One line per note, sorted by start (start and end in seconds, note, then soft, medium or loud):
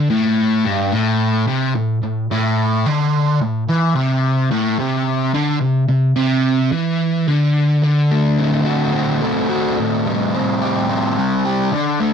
0.10 0.64 A2 loud
0.65 0.92 G2 medium
0.92 1.47 A2 loud
1.47 1.74 C3 loud
1.75 1.98 A2 medium
2.03 2.25 A2 medium
2.31 2.86 A2 loud
2.86 3.40 D3 loud
3.42 3.64 A2 medium
3.69 3.95 E3 medium
3.96 4.51 C3 loud
4.51 4.78 A2 medium
4.79 5.33 C3 loud
5.34 5.60 D3 loud
5.61 5.84 C3 medium
5.88 6.11 C3 medium
6.16 6.71 C3 loud
6.72 7.27 E3 medium
7.28 7.82 D3 loud
7.83 9.22 D3 medium
8.11 9.21 A3 medium
8.38 8.93 C4 medium
8.65 9.48 F#4 medium
8.93 10.33 C4 medium
9.22 10.05 A3 medium
9.50 9.78 F#4 medium
9.79 11.17 A2 medium
10.06 11.16 G3 medium
10.34 10.88 C4 medium
10.61 11.44 G4 medium
10.89 11.73 C4 medium
11.17 11.73 G3 medium
11.45 11.73 G4 medium
11.72 12.13 D3 medium
12.00 12.13 A3 medium